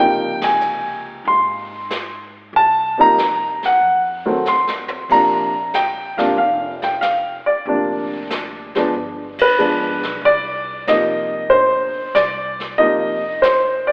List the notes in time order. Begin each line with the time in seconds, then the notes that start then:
Already playing: C#2
0.00 C3 F3 A#3 D#4 G5
0.42 G#5, snare, ride
0.61 hi-hat pedal
1.25 G#2 C6, brush sweep
1.90 snare, hi-hat pedal
2.53 C2 A5, brush sweep
2.97 C3 F3 A#3 D#4 A#5
3.18 snare, hi-hat pedal
3.63 F#5, snare
3.81 F2, brush sweep
4.25 D#3 F#3 A3 C4
4.45 C6, snare, hi-hat pedal
4.67 snare
4.88 floor tom
5.09 A#1 C3 F3 A#3 D4 A#5, brush sweep, kick, crash
5.74 G5, snare, hi-hat pedal
6.17 G#1 C3 F3 A#3 D4 F5, snare
6.37 F1 F5, brush sweep
6.82 G5, snare
7.01 F5, snare, hi-hat pedal
7.46 D5, muted upright bass stroke
7.66 D2 C3 F3 A#3 D4, brush sweep
8.30 snare, hi-hat pedal
8.75 F3 G#3 B3 D4, snare
8.94 G1, brush sweep
9.39 B4, kick, ride
9.58 F3 G#3 B3 D4, hi-hat pedal
9.78 G#1
10.01 B1, snare
10.22 C2 D5, brush sweep
10.87 C3 F3 A#3 D#4 D#5, snare, hi-hat pedal
11.50 G1 C5, brush sweep
12.15 C2 D5, snare, hi-hat pedal
12.60 snare
12.78 F1 C3 F3 A#3 D#4 D#5, brush sweep
13.42 C5, snare, hi-hat pedal
13.87 D5